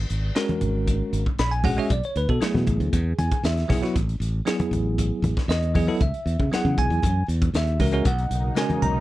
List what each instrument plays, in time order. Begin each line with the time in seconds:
0.10 fingered electric bass G#1, closed hi-hat
0.35 tine electric piano G#3 C#4 F#4 A#4, snare, closed hi-hat
0.49 closed hi-hat, high conga
0.61 fingered electric bass G#1, closed hi-hat, low conga
0.88 kick, closed hi-hat
1.13 fingered electric bass G#1, closed hi-hat
1.26 kick
1.39 fingered electric bass A#1, tine electric piano B5, snare, closed hi-hat
1.51 tine electric piano G#5, closed hi-hat
1.64 tine electric piano G#3 C#4 F#4 G#4 F#5, kick, open hi-hat, high conga, low conga
1.77 tine electric piano G#3 C#4 F#4 G#4 E5
1.90 fingered electric bass B1, tine electric piano D5, kick, closed hi-hat
2.04 tine electric piano C#5, closed hi-hat
2.16 fingered electric bass D2, tine electric piano B4, closed hi-hat
2.29 fingered electric bass B2, tine electric piano A4, kick
2.40 tine electric piano F#3 A3 B3 E4 G#4, muted fingered electric bass stroke, snare, closed hi-hat
2.54 fingered electric bass B2, snare, high conga
2.67 fingered electric bass A1, kick, closed hi-hat, low conga
2.80 fingered electric bass D2, closed hi-hat
2.93 fingered electric bass E2, kick, closed hi-hat
3.19 fingered electric bass E2, tine electric piano G#5, closed hi-hat, high conga
3.31 kick, closed hi-hat
3.44 fingered electric bass E2, tine electric piano E5, snare, closed hi-hat
3.57 snare, closed hi-hat
3.69 fingered electric bass B1, tine electric piano F#3 B3 E4 G#4, kick, snare, open hi-hat, high conga, low conga
3.82 tine electric piano F#3 B3 E4 F#4, muted fingered electric bass stroke, snare, closed hi-hat
3.96 fingered electric bass A1, kick, closed hi-hat
4.09 closed hi-hat
4.20 fingered electric bass A1, closed hi-hat
4.45 tine electric piano F#3 B3 E4 G#4, snare, closed hi-hat
4.60 closed hi-hat, high conga
4.71 fingered electric bass A1, closed hi-hat, low conga
4.98 kick, closed hi-hat
5.22 fingered electric bass A1, closed hi-hat, high conga
5.37 kick, snare
5.48 fingered electric bass E2, tine electric piano D#5, snare, closed hi-hat
5.63 closed hi-hat
5.75 tine electric piano F#3 B3 E4 G#4, kick, open hi-hat, high conga, low conga
5.87 tine electric piano F#3 B3 E4 A4
6.01 fingered electric bass C#2, tine electric piano E5, kick, closed hi-hat
6.14 closed hi-hat
6.26 fingered electric bass E2, closed hi-hat
6.39 fingered electric bass C#3, kick, high conga
6.51 tine electric piano F#3 B3 E4 G#4 F#5, muted fingered electric bass stroke, snare, closed hi-hat
6.65 fingered electric bass C#3, high conga
6.78 fingered electric bass B1, tine electric piano G#5, kick, closed hi-hat, low conga
6.90 fingered electric bass E2, closed hi-hat
7.03 fingered electric bass F#2, kick, closed hi-hat, high conga
7.28 fingered electric bass E2, closed hi-hat
7.42 kick, closed hi-hat
7.54 fingered electric bass D#2, tine electric piano E5, snare, closed hi-hat
7.67 closed hi-hat
7.80 fingered electric bass C#2, tine electric piano G#3 C#4 F#4 A#4, kick, open hi-hat, high conga, low conga
7.92 tine electric piano G#3 C#4 F#4 A#4, closed hi-hat
8.05 fingered electric bass B1, analog synth pad B2 C#3 F#3 A#3 D#4, tine electric piano F#5, kick, closed hi-hat
8.18 closed hi-hat
8.31 fingered electric bass B1, closed hi-hat
8.55 tine electric piano G#3 C#4 F#4 A#4 G#5, snare, closed hi-hat
8.70 closed hi-hat, high conga
8.82 fingered electric bass B1, tine electric piano A#5, closed hi-hat, low conga